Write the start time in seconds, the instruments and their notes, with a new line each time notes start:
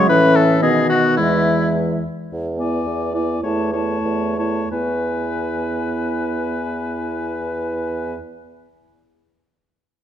Already playing: french horn F#3
0.08 bassoon A2, french horn E3, clarinet C#4, oboe B4, flute E5
0.36 oboe A4
0.62 bassoon B2, french horn D#3, clarinet B3, oboe G#4, flute D#5
0.90 oboe F#4
1.17 bassoon E2, french horn E3, clarinet G#3, oboe E4, flute E5
2.32 bassoon E2
2.58 french horn B3, clarinet E4, oboe D5, flute G#5
2.86 bassoon E2
3.14 french horn B3, clarinet E4, oboe D5, flute G#5
3.43 bassoon E2, french horn A3, clarinet E4, oboe C#5, flute A5
3.73 french horn A3, clarinet E4, oboe C#5, flute A5
4.05 bassoon E2
4.37 french horn A3, clarinet E4, oboe C#5, flute A5
4.71 bassoon E2, french horn B3, clarinet E4, oboe B4, flute G#5